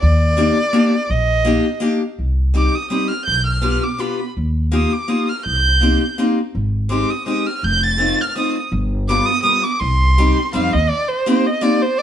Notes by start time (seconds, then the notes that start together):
0.02 D#2 D5
0.37 A#3 D4 D#4 G4
0.73 A#3 D4 D#4 G4
1.10 A#1 D#5
1.45 A#3 D4 D#4 G4
1.80 A#3 D4 D#4 G4
2.19 C2
2.54 G3 C4 D#4 G4 D6
2.75 D#6
2.90 G3 C4 D#4 G4 D#6
3.08 F6
3.25 B1 G6
3.46 F6
3.62 B3 D4 F4 G4
3.84 D6
3.98 B3 D4 F4 G4 B5
4.37 D#2
4.72 A#3 D#4 F4 G4 D#6
4.93 D6
5.08 A#3 D#4 F4 G4 D#6
5.29 F6
5.45 C2 G6
5.81 A#3 C4 D#4 G4
6.18 A#3 C4 D#4 G4
6.55 G#1
6.89 G#3 C4 D#4 G4 D6
7.10 D#6
7.26 G#3 C4 D#4 G4 D#6
7.46 F6
7.63 F1 G6
7.83 A6
7.98 A3 C4 D#4 F4
8.21 F6
8.35 A3 C4 D#4 F4 D#6
8.72 G1
9.08 G3 B3 D4 F4 D6
9.25 D#6
9.43 G3 B3 D4 F4 D#6
9.63 D6
9.79 C2 C6
10.18 G3 C4 D#4 G4
10.53 F2 G3 C4 D#4 G4 F5
10.73 D#2 D#5
10.89 D5
11.08 C5
11.26 A#3 C4 D#4 G4
11.46 D#5
11.61 A#3 C4 D#4 G4 D5
11.82 C5
11.98 D5